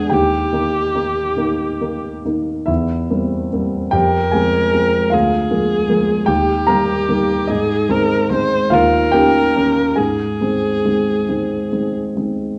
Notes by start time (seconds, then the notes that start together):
Already playing: E2 G#3 D4 F#4 G#4 F#5 G#5
0.10 D#2 G4 G5
0.52 D#3 A#3 D#4
0.95 D#3 A#3 D#4
1.37 D#3 A#3 D#4
1.81 D#3 A#3 D#4
2.25 D#3 A#3 D#4
2.66 E2 E4 E5
3.10 G3 A#3 C4
3.53 G3 A#3 C4
3.91 F2 G4 A#4 G5
4.32 F3 G#3 C4 G#4 G#5
4.73 F3 G#3 C4
5.10 D2 F4 G#4 F5
5.51 F3 G#3 A#3
5.88 F3 G#3 A#3
6.26 D#2 G4 G5
6.67 D#3 G3 A#3 A#4 A#5
7.09 D#3 G3 A#3
7.47 G#2 D#4 G#4 D#5
7.89 D#3 G#3 C4 A#4
8.30 D#3 G#3 C4 C5
8.70 D#2 F4 A#4 F5
9.12 D#3 A#3 C#4 G4 G5
9.56 D#3 A#3 C#4
9.96 G#2 G#4 G#5
10.41 D#3 G#3 C4
10.85 D#3 G#3 C4
11.29 D#3 G#3 C4
11.72 D#3 G#3 C4
12.17 D#3 G#3 C4